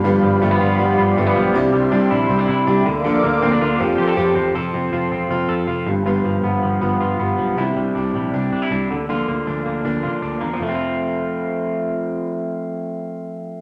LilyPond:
<<
  \new Staff \with { instrumentName = "Analog synth pad" } { \time 4/4 \key f \major \tempo 4 = 159 << { <f'' b''>1 | <e'' c'''>2.~ <e'' c'''>8 <f'' d'''>8~ | <f'' d'''>2 <g'' c'''>2 | r1 |
r1 | r1 | r1 | r1 |
r1 | } \\ { <g' d''>1~ | <g' d''>2.~ <g' d''>8 <bes' d''>8~ | <bes' d''>2 a'2 | r1 |
r1 | r1 | r1 | r1 |
r1 | } >> }
  \new Staff \with { instrumentName = "Steel-string acoustic guitar" } { \time 4/4 \key f \major <g, d f b f' g'>8 <f b f' g'>8 <g, d f b f' g'>8 <f b f' g'>8 <f b f' g'>4 <g, d f b f' g'>8 <f b f' g'>8 | <c g d' e' g'>8 <d' e' g'>8 <c g d' e' g'>8 <d' e' g'>8 <g d' e' g'>4 <c g d' e' g'>8 <bes d' bes'>8 | <d f bes d' bes'>8 <bes d' bes'>8 <d f bes d' bes'>8 <bes d' bes'>8 <f c' g' a'>4 <f c' g' a'>8 <c' g' a'>8 | <f c' f' a'>8 <c' f' a'>8 <f c' f' a'>4 <f c' f' a'>4 <f c' f' a'>8 <f b f' g'>8 |
<g, d f b f' g'>8 <f b f' g'>8 <f b f' g'>4 <g, d f b f' g'>4 <f b f' g'>8 <f b f' g'>8 | <c g d' e' g'>8 <d' e' g'>8 <g d' e' g'>4 <c g d' e' g'>4 <g d' e' g'>8 <bes d' bes'>8 | <d f bes d' bes'>8 <bes bes'>8 <f bes d' bes'>4 <d f bes d' bes'>4 <f bes d' bes'>8 <bes d' bes'>8 | <f c' f' a'>1~ |
<f c' f' a'>1 | }
  \new Staff \with { instrumentName = "Clean electric guitar" } { \time 4/4 \key f \major g,8 f8 a16 b16 f'8 b8 f'8 a16 b16 f8 | c8 g8 d'8 e'8 c'16 d'16 e'8 d'8 d8 | d8 bes8 c'16 d'16 f'8 f8 g'16 a'16 g'8 c'8 | <f a'>8 c'8 f'8 c'8 f'8 a'8 f'8 g,8 |
<g, f'>8 f8 b8 f8 b8 f'8 b8 f8 | <c e'>8 g8 d'8 g8 d'8 d'16 e'16 d'8 d8 | <d f'>8 bes8 d'8 bes8 d'8 f'8 d'8 bes8 | <f a c' f'>1~ |
<f a c' f'>1 | }
  \new Staff \with { instrumentName = "Picked electric bass" } { \clef bass \time 4/4 \key f \major g,,8 g,,8 g,,8 g,,8 g,,8 g,8 g,,8 b,,8 | c,8 c,8 c,8 bes,,8 c,8 c8 c,8 d,8~ | d,8 d,8 d,8 d,8 f,8 f8 f,8 e,8 | f,,8 f,,8 f,,8 e,,8 f,,8 f,8 f,,8 g,,8~ |
g,,8 g,,8 g,,8 g,,8 g,,8 g,8 g,,8 b,,8 | c,8 c,8 c,8 bes,,8 c,8 c8 c,8 d,8~ | d,8 d,8 d,8 d,8 d,8 d8 d,8 e,8 | f,,1~ |
f,,1 | }
>>